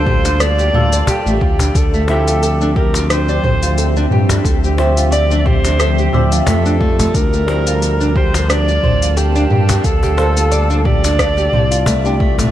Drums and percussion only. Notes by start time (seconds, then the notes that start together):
0.07 kick, mid tom
0.25 cajon slap, open hi-hat, shaker
0.40 cross-stick, open hi-hat, shaker
0.58 cajon slap, shaker
0.74 mid tom
0.93 open hi-hat, shaker
1.07 cajon bass, open hi-hat, shaker
1.27 shaker
1.41 kick
1.59 cajon bass, open hi-hat, shaker
1.75 kick, open hi-hat, shaker
1.94 shaker
2.08 cajon slap
2.28 open hi-hat, shaker
2.43 open hi-hat, shaker
2.61 shaker
2.76 kick
2.94 cajon slap, open hi-hat, shaker
3.10 cross-stick, open hi-hat, shaker
3.29 shaker
3.44 kick, mid tom
3.63 open hi-hat, shaker
3.78 open hi-hat, shaker
3.96 shaker
4.11 mid tom
4.29 cajon bass, cajon slap, open hi-hat, shaker
4.45 kick, open hi-hat, shaker
4.64 shaker
4.78 cajon slap
4.97 open hi-hat, shaker
5.12 open hi-hat, shaker
5.31 shaker
5.46 kick, mid tom
5.64 cajon slap, open hi-hat, shaker
5.80 cross-stick, open hi-hat, shaker
5.98 shaker
6.13 mid tom
6.32 open hi-hat, shaker
6.47 cajon bass, open hi-hat, shaker
6.66 shaker
6.81 kick
6.99 cajon bass, open hi-hat, shaker
7.14 kick, open hi-hat, shaker
7.33 shaker
7.48 cajon slap
7.67 open hi-hat, shaker
7.82 open hi-hat, shaker
8.01 shaker
8.16 kick
8.34 cajon slap, open hi-hat, shaker
8.50 cross-stick, open hi-hat, shaker
8.69 shaker
8.83 kick, mid tom
9.02 open hi-hat, shaker
9.17 open hi-hat, shaker
9.36 shaker
9.51 mid tom
9.69 cajon bass, cajon slap, open hi-hat, shaker
9.84 kick, open hi-hat, shaker
10.03 cajon bass, shaker
10.18 cajon slap
10.37 open hi-hat, shaker
10.52 open hi-hat, shaker
10.71 shaker
10.85 kick, mid tom
11.04 cajon slap, open hi-hat, shaker
11.19 kick, cross-stick, open hi-hat, shaker
11.37 cajon slap, shaker
11.53 mid tom
11.72 open hi-hat, shaker
11.86 cajon bass, open hi-hat, shaker
12.05 shaker
12.20 kick
12.39 cajon bass, mid tom, open hi-hat, shaker